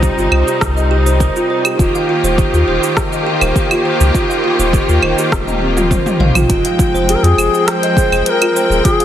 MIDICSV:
0, 0, Header, 1, 7, 480
1, 0, Start_track
1, 0, Key_signature, -4, "minor"
1, 0, Tempo, 588235
1, 1461, Time_signature, 4, 2, 24, 8
1, 7384, End_track
2, 0, Start_track
2, 0, Title_t, "Ney"
2, 0, Program_c, 0, 77
2, 5782, Note_on_c, 0, 68, 80
2, 5833, Note_on_c, 0, 70, 68
2, 5846, Note_off_c, 0, 68, 0
2, 5903, Note_on_c, 0, 68, 87
2, 5915, Note_off_c, 0, 70, 0
2, 6259, Note_on_c, 0, 72, 101
2, 6272, Note_off_c, 0, 68, 0
2, 6734, Note_off_c, 0, 72, 0
2, 6734, Note_on_c, 0, 72, 82
2, 6768, Note_on_c, 0, 70, 89
2, 6776, Note_off_c, 0, 72, 0
2, 7215, Note_on_c, 0, 68, 93
2, 7227, Note_off_c, 0, 70, 0
2, 7384, Note_off_c, 0, 68, 0
2, 7384, End_track
3, 0, Start_track
3, 0, Title_t, "Synth texture"
3, 0, Program_c, 1, 99
3, 0, Note_on_c, 1, 63, 85
3, 0, Note_on_c, 1, 75, 84
3, 5308, Note_off_c, 1, 75, 0
3, 5309, Note_off_c, 1, 63, 0
3, 7384, End_track
4, 0, Start_track
4, 0, Title_t, "Kalimba"
4, 0, Program_c, 2, 108
4, 20, Note_on_c, 2, 67, 78
4, 133, Note_off_c, 2, 67, 0
4, 145, Note_on_c, 2, 65, 66
4, 249, Note_off_c, 2, 65, 0
4, 260, Note_on_c, 2, 72, 74
4, 380, Note_off_c, 2, 72, 0
4, 386, Note_on_c, 2, 67, 69
4, 451, Note_off_c, 2, 67, 0
4, 501, Note_on_c, 2, 70, 82
4, 614, Note_off_c, 2, 70, 0
4, 625, Note_on_c, 2, 75, 67
4, 729, Note_off_c, 2, 75, 0
4, 742, Note_on_c, 2, 67, 97
4, 854, Note_off_c, 2, 67, 0
4, 867, Note_on_c, 2, 72, 78
4, 970, Note_off_c, 2, 72, 0
4, 982, Note_on_c, 2, 70, 90
4, 1101, Note_off_c, 2, 70, 0
4, 1110, Note_on_c, 2, 65, 69
4, 1211, Note_off_c, 2, 65, 0
4, 1225, Note_on_c, 2, 72, 69
4, 1342, Note_off_c, 2, 72, 0
4, 1355, Note_on_c, 2, 67, 72
4, 1416, Note_off_c, 2, 67, 0
4, 1470, Note_on_c, 2, 65, 81
4, 1584, Note_off_c, 2, 65, 0
4, 1594, Note_on_c, 2, 77, 77
4, 1693, Note_off_c, 2, 77, 0
4, 1707, Note_on_c, 2, 65, 76
4, 1817, Note_off_c, 2, 65, 0
4, 1829, Note_on_c, 2, 72, 81
4, 1931, Note_off_c, 2, 72, 0
4, 1945, Note_on_c, 2, 67, 82
4, 2056, Note_off_c, 2, 67, 0
4, 2072, Note_on_c, 2, 65, 74
4, 2172, Note_off_c, 2, 65, 0
4, 2184, Note_on_c, 2, 72, 70
4, 2302, Note_off_c, 2, 72, 0
4, 2311, Note_on_c, 2, 67, 75
4, 2374, Note_off_c, 2, 67, 0
4, 2426, Note_on_c, 2, 70, 84
4, 2537, Note_off_c, 2, 70, 0
4, 2549, Note_on_c, 2, 75, 73
4, 2651, Note_off_c, 2, 75, 0
4, 2664, Note_on_c, 2, 67, 93
4, 2776, Note_off_c, 2, 67, 0
4, 2788, Note_on_c, 2, 72, 75
4, 2890, Note_off_c, 2, 72, 0
4, 2903, Note_on_c, 2, 70, 96
4, 3021, Note_off_c, 2, 70, 0
4, 3032, Note_on_c, 2, 65, 66
4, 3132, Note_off_c, 2, 65, 0
4, 3145, Note_on_c, 2, 72, 76
4, 3262, Note_off_c, 2, 72, 0
4, 3271, Note_on_c, 2, 67, 75
4, 3334, Note_off_c, 2, 67, 0
4, 3384, Note_on_c, 2, 65, 79
4, 3502, Note_off_c, 2, 65, 0
4, 3507, Note_on_c, 2, 77, 74
4, 3610, Note_off_c, 2, 77, 0
4, 3623, Note_on_c, 2, 65, 72
4, 3735, Note_off_c, 2, 65, 0
4, 3748, Note_on_c, 2, 72, 76
4, 3850, Note_off_c, 2, 72, 0
4, 3863, Note_on_c, 2, 67, 76
4, 3975, Note_off_c, 2, 67, 0
4, 3987, Note_on_c, 2, 65, 73
4, 4090, Note_off_c, 2, 65, 0
4, 4105, Note_on_c, 2, 72, 72
4, 4222, Note_off_c, 2, 72, 0
4, 4229, Note_on_c, 2, 67, 74
4, 4293, Note_off_c, 2, 67, 0
4, 4344, Note_on_c, 2, 70, 80
4, 4455, Note_off_c, 2, 70, 0
4, 4467, Note_on_c, 2, 75, 71
4, 4570, Note_off_c, 2, 75, 0
4, 4584, Note_on_c, 2, 60, 68
4, 4654, Note_off_c, 2, 60, 0
4, 4708, Note_on_c, 2, 65, 77
4, 4816, Note_off_c, 2, 65, 0
4, 4822, Note_on_c, 2, 72, 78
4, 4934, Note_off_c, 2, 72, 0
4, 4947, Note_on_c, 2, 67, 68
4, 5050, Note_off_c, 2, 67, 0
4, 5064, Note_on_c, 2, 77, 76
4, 5134, Note_off_c, 2, 77, 0
4, 5190, Note_on_c, 2, 65, 80
4, 5253, Note_off_c, 2, 65, 0
4, 5301, Note_on_c, 2, 65, 83
4, 5420, Note_off_c, 2, 65, 0
4, 5430, Note_on_c, 2, 77, 76
4, 5531, Note_off_c, 2, 77, 0
4, 5540, Note_on_c, 2, 65, 75
4, 5654, Note_off_c, 2, 65, 0
4, 5667, Note_on_c, 2, 72, 83
4, 5770, Note_off_c, 2, 72, 0
4, 5786, Note_on_c, 2, 67, 79
4, 5897, Note_off_c, 2, 67, 0
4, 5909, Note_on_c, 2, 65, 74
4, 6011, Note_off_c, 2, 65, 0
4, 6023, Note_on_c, 2, 72, 73
4, 6141, Note_off_c, 2, 72, 0
4, 6150, Note_on_c, 2, 68, 78
4, 6213, Note_off_c, 2, 68, 0
4, 6266, Note_on_c, 2, 70, 82
4, 6376, Note_off_c, 2, 70, 0
4, 6390, Note_on_c, 2, 75, 73
4, 6491, Note_off_c, 2, 75, 0
4, 6502, Note_on_c, 2, 68, 97
4, 6614, Note_off_c, 2, 68, 0
4, 6628, Note_on_c, 2, 72, 78
4, 6730, Note_off_c, 2, 72, 0
4, 6741, Note_on_c, 2, 70, 99
4, 6860, Note_off_c, 2, 70, 0
4, 6871, Note_on_c, 2, 65, 73
4, 6972, Note_off_c, 2, 65, 0
4, 6986, Note_on_c, 2, 72, 76
4, 7103, Note_off_c, 2, 72, 0
4, 7111, Note_on_c, 2, 68, 77
4, 7174, Note_off_c, 2, 68, 0
4, 7221, Note_on_c, 2, 65, 88
4, 7340, Note_off_c, 2, 65, 0
4, 7346, Note_on_c, 2, 77, 80
4, 7384, Note_off_c, 2, 77, 0
4, 7384, End_track
5, 0, Start_track
5, 0, Title_t, "String section"
5, 0, Program_c, 3, 48
5, 0, Note_on_c, 3, 48, 83
5, 0, Note_on_c, 3, 55, 74
5, 0, Note_on_c, 3, 60, 72
5, 0, Note_on_c, 3, 63, 88
5, 1428, Note_off_c, 3, 60, 0
5, 1429, Note_off_c, 3, 48, 0
5, 1429, Note_off_c, 3, 55, 0
5, 1429, Note_off_c, 3, 63, 0
5, 1469, Note_on_c, 3, 51, 77
5, 1469, Note_on_c, 3, 65, 77
5, 1470, Note_on_c, 3, 58, 77
5, 1470, Note_on_c, 3, 67, 85
5, 5272, Note_off_c, 3, 51, 0
5, 5272, Note_off_c, 3, 65, 0
5, 5273, Note_off_c, 3, 58, 0
5, 5273, Note_off_c, 3, 67, 0
5, 5304, Note_on_c, 3, 79, 80
5, 5305, Note_on_c, 3, 56, 93
5, 5306, Note_on_c, 3, 60, 72
5, 5308, Note_on_c, 3, 53, 80
5, 7384, Note_off_c, 3, 53, 0
5, 7384, Note_off_c, 3, 56, 0
5, 7384, Note_off_c, 3, 60, 0
5, 7384, Note_off_c, 3, 79, 0
5, 7384, End_track
6, 0, Start_track
6, 0, Title_t, "Sub bass"
6, 0, Program_c, 4, 38
6, 141, Note_on_c, 4, 31, 81
6, 228, Note_off_c, 4, 31, 0
6, 254, Note_on_c, 4, 36, 83
6, 350, Note_off_c, 4, 36, 0
6, 503, Note_on_c, 4, 36, 94
6, 1055, Note_off_c, 4, 36, 0
6, 1461, Note_on_c, 4, 27, 100
6, 1554, Note_off_c, 4, 27, 0
6, 1822, Note_on_c, 4, 27, 89
6, 1998, Note_off_c, 4, 27, 0
6, 2064, Note_on_c, 4, 39, 78
6, 2150, Note_off_c, 4, 39, 0
6, 2179, Note_on_c, 4, 27, 83
6, 2273, Note_off_c, 4, 27, 0
6, 2785, Note_on_c, 4, 27, 107
6, 2870, Note_off_c, 4, 27, 0
6, 3266, Note_on_c, 4, 37, 83
6, 3351, Note_off_c, 4, 37, 0
6, 3745, Note_on_c, 4, 27, 91
6, 3920, Note_off_c, 4, 27, 0
6, 3984, Note_on_c, 4, 39, 77
6, 4070, Note_off_c, 4, 39, 0
6, 4099, Note_on_c, 4, 27, 89
6, 4193, Note_off_c, 4, 27, 0
6, 4341, Note_on_c, 4, 27, 102
6, 4894, Note_off_c, 4, 27, 0
6, 5053, Note_on_c, 4, 34, 107
6, 5150, Note_off_c, 4, 34, 0
6, 5181, Note_on_c, 4, 34, 88
6, 5268, Note_off_c, 4, 34, 0
6, 5301, Note_on_c, 4, 29, 99
6, 5393, Note_off_c, 4, 29, 0
6, 5659, Note_on_c, 4, 29, 91
6, 5837, Note_off_c, 4, 29, 0
6, 5899, Note_on_c, 4, 41, 80
6, 5987, Note_off_c, 4, 41, 0
6, 6012, Note_on_c, 4, 29, 84
6, 6109, Note_off_c, 4, 29, 0
6, 6618, Note_on_c, 4, 29, 104
6, 6707, Note_off_c, 4, 29, 0
6, 7098, Note_on_c, 4, 27, 84
6, 7187, Note_off_c, 4, 27, 0
6, 7384, End_track
7, 0, Start_track
7, 0, Title_t, "Drums"
7, 22, Note_on_c, 9, 36, 98
7, 25, Note_on_c, 9, 69, 50
7, 103, Note_off_c, 9, 36, 0
7, 106, Note_off_c, 9, 69, 0
7, 150, Note_on_c, 9, 69, 28
7, 232, Note_off_c, 9, 69, 0
7, 260, Note_on_c, 9, 75, 62
7, 341, Note_off_c, 9, 75, 0
7, 391, Note_on_c, 9, 69, 60
7, 473, Note_off_c, 9, 69, 0
7, 500, Note_on_c, 9, 37, 78
7, 503, Note_on_c, 9, 36, 94
7, 505, Note_on_c, 9, 69, 55
7, 582, Note_off_c, 9, 37, 0
7, 584, Note_off_c, 9, 36, 0
7, 586, Note_off_c, 9, 69, 0
7, 631, Note_on_c, 9, 69, 29
7, 712, Note_off_c, 9, 69, 0
7, 870, Note_on_c, 9, 69, 65
7, 952, Note_off_c, 9, 69, 0
7, 982, Note_on_c, 9, 36, 95
7, 983, Note_on_c, 9, 69, 50
7, 1063, Note_off_c, 9, 36, 0
7, 1064, Note_off_c, 9, 69, 0
7, 1111, Note_on_c, 9, 69, 31
7, 1192, Note_off_c, 9, 69, 0
7, 1346, Note_on_c, 9, 75, 78
7, 1350, Note_on_c, 9, 69, 61
7, 1427, Note_off_c, 9, 75, 0
7, 1432, Note_off_c, 9, 69, 0
7, 1463, Note_on_c, 9, 36, 101
7, 1467, Note_on_c, 9, 69, 53
7, 1545, Note_off_c, 9, 36, 0
7, 1549, Note_off_c, 9, 69, 0
7, 1591, Note_on_c, 9, 69, 31
7, 1673, Note_off_c, 9, 69, 0
7, 1831, Note_on_c, 9, 69, 60
7, 1913, Note_off_c, 9, 69, 0
7, 1943, Note_on_c, 9, 36, 97
7, 1946, Note_on_c, 9, 69, 48
7, 2025, Note_off_c, 9, 36, 0
7, 2028, Note_off_c, 9, 69, 0
7, 2073, Note_on_c, 9, 69, 30
7, 2154, Note_off_c, 9, 69, 0
7, 2313, Note_on_c, 9, 69, 59
7, 2394, Note_off_c, 9, 69, 0
7, 2421, Note_on_c, 9, 37, 80
7, 2423, Note_on_c, 9, 36, 96
7, 2426, Note_on_c, 9, 69, 54
7, 2503, Note_off_c, 9, 37, 0
7, 2504, Note_off_c, 9, 36, 0
7, 2507, Note_off_c, 9, 69, 0
7, 2552, Note_on_c, 9, 69, 30
7, 2633, Note_off_c, 9, 69, 0
7, 2786, Note_on_c, 9, 75, 82
7, 2791, Note_on_c, 9, 69, 60
7, 2868, Note_off_c, 9, 75, 0
7, 2872, Note_off_c, 9, 69, 0
7, 2902, Note_on_c, 9, 36, 95
7, 2906, Note_on_c, 9, 69, 53
7, 2984, Note_off_c, 9, 36, 0
7, 2987, Note_off_c, 9, 69, 0
7, 3027, Note_on_c, 9, 75, 82
7, 3032, Note_on_c, 9, 69, 31
7, 3109, Note_off_c, 9, 75, 0
7, 3114, Note_off_c, 9, 69, 0
7, 3270, Note_on_c, 9, 69, 64
7, 3352, Note_off_c, 9, 69, 0
7, 3382, Note_on_c, 9, 36, 100
7, 3386, Note_on_c, 9, 69, 54
7, 3464, Note_off_c, 9, 36, 0
7, 3468, Note_off_c, 9, 69, 0
7, 3515, Note_on_c, 9, 69, 32
7, 3596, Note_off_c, 9, 69, 0
7, 3751, Note_on_c, 9, 69, 60
7, 3833, Note_off_c, 9, 69, 0
7, 3862, Note_on_c, 9, 36, 101
7, 3866, Note_on_c, 9, 69, 48
7, 3944, Note_off_c, 9, 36, 0
7, 3948, Note_off_c, 9, 69, 0
7, 3991, Note_on_c, 9, 69, 31
7, 4072, Note_off_c, 9, 69, 0
7, 4101, Note_on_c, 9, 75, 55
7, 4182, Note_off_c, 9, 75, 0
7, 4231, Note_on_c, 9, 69, 62
7, 4313, Note_off_c, 9, 69, 0
7, 4342, Note_on_c, 9, 36, 96
7, 4344, Note_on_c, 9, 37, 80
7, 4344, Note_on_c, 9, 48, 61
7, 4348, Note_on_c, 9, 69, 55
7, 4423, Note_off_c, 9, 36, 0
7, 4425, Note_off_c, 9, 37, 0
7, 4425, Note_off_c, 9, 48, 0
7, 4430, Note_off_c, 9, 69, 0
7, 4469, Note_on_c, 9, 48, 55
7, 4473, Note_on_c, 9, 69, 33
7, 4550, Note_off_c, 9, 48, 0
7, 4555, Note_off_c, 9, 69, 0
7, 4707, Note_on_c, 9, 47, 64
7, 4712, Note_on_c, 9, 69, 62
7, 4789, Note_off_c, 9, 47, 0
7, 4793, Note_off_c, 9, 69, 0
7, 4821, Note_on_c, 9, 47, 81
7, 4822, Note_on_c, 9, 36, 95
7, 4826, Note_on_c, 9, 69, 50
7, 4903, Note_off_c, 9, 36, 0
7, 4903, Note_off_c, 9, 47, 0
7, 4907, Note_off_c, 9, 69, 0
7, 4946, Note_on_c, 9, 47, 75
7, 4951, Note_on_c, 9, 69, 31
7, 5028, Note_off_c, 9, 47, 0
7, 5033, Note_off_c, 9, 69, 0
7, 5059, Note_on_c, 9, 45, 96
7, 5141, Note_off_c, 9, 45, 0
7, 5184, Note_on_c, 9, 45, 83
7, 5184, Note_on_c, 9, 75, 81
7, 5189, Note_on_c, 9, 69, 60
7, 5266, Note_off_c, 9, 45, 0
7, 5266, Note_off_c, 9, 75, 0
7, 5270, Note_off_c, 9, 69, 0
7, 5301, Note_on_c, 9, 36, 119
7, 5301, Note_on_c, 9, 42, 70
7, 5306, Note_on_c, 9, 69, 47
7, 5382, Note_off_c, 9, 36, 0
7, 5383, Note_off_c, 9, 42, 0
7, 5387, Note_off_c, 9, 69, 0
7, 5425, Note_on_c, 9, 42, 48
7, 5429, Note_on_c, 9, 69, 21
7, 5506, Note_off_c, 9, 42, 0
7, 5511, Note_off_c, 9, 69, 0
7, 5541, Note_on_c, 9, 36, 104
7, 5545, Note_on_c, 9, 69, 69
7, 5623, Note_off_c, 9, 36, 0
7, 5627, Note_off_c, 9, 69, 0
7, 5673, Note_on_c, 9, 69, 34
7, 5755, Note_off_c, 9, 69, 0
7, 5785, Note_on_c, 9, 42, 65
7, 5790, Note_on_c, 9, 69, 45
7, 5867, Note_off_c, 9, 42, 0
7, 5871, Note_off_c, 9, 69, 0
7, 5911, Note_on_c, 9, 42, 44
7, 5915, Note_on_c, 9, 69, 21
7, 5992, Note_off_c, 9, 42, 0
7, 5997, Note_off_c, 9, 69, 0
7, 6026, Note_on_c, 9, 75, 58
7, 6030, Note_on_c, 9, 69, 74
7, 6107, Note_off_c, 9, 75, 0
7, 6112, Note_off_c, 9, 69, 0
7, 6156, Note_on_c, 9, 69, 35
7, 6237, Note_off_c, 9, 69, 0
7, 6265, Note_on_c, 9, 37, 89
7, 6265, Note_on_c, 9, 42, 71
7, 6270, Note_on_c, 9, 69, 48
7, 6347, Note_off_c, 9, 37, 0
7, 6347, Note_off_c, 9, 42, 0
7, 6351, Note_off_c, 9, 69, 0
7, 6391, Note_on_c, 9, 42, 49
7, 6395, Note_on_c, 9, 69, 22
7, 6472, Note_off_c, 9, 42, 0
7, 6477, Note_off_c, 9, 69, 0
7, 6501, Note_on_c, 9, 36, 104
7, 6510, Note_on_c, 9, 69, 72
7, 6583, Note_off_c, 9, 36, 0
7, 6591, Note_off_c, 9, 69, 0
7, 6630, Note_on_c, 9, 75, 75
7, 6634, Note_on_c, 9, 69, 33
7, 6711, Note_off_c, 9, 75, 0
7, 6716, Note_off_c, 9, 69, 0
7, 6742, Note_on_c, 9, 42, 71
7, 6747, Note_on_c, 9, 69, 44
7, 6824, Note_off_c, 9, 42, 0
7, 6828, Note_off_c, 9, 69, 0
7, 6868, Note_on_c, 9, 42, 46
7, 6868, Note_on_c, 9, 75, 78
7, 6873, Note_on_c, 9, 69, 23
7, 6950, Note_off_c, 9, 42, 0
7, 6950, Note_off_c, 9, 75, 0
7, 6955, Note_off_c, 9, 69, 0
7, 6988, Note_on_c, 9, 69, 74
7, 7070, Note_off_c, 9, 69, 0
7, 7112, Note_on_c, 9, 69, 31
7, 7194, Note_off_c, 9, 69, 0
7, 7221, Note_on_c, 9, 36, 125
7, 7222, Note_on_c, 9, 42, 66
7, 7226, Note_on_c, 9, 69, 46
7, 7303, Note_off_c, 9, 36, 0
7, 7303, Note_off_c, 9, 42, 0
7, 7308, Note_off_c, 9, 69, 0
7, 7346, Note_on_c, 9, 42, 50
7, 7351, Note_on_c, 9, 69, 23
7, 7384, Note_off_c, 9, 42, 0
7, 7384, Note_off_c, 9, 69, 0
7, 7384, End_track
0, 0, End_of_file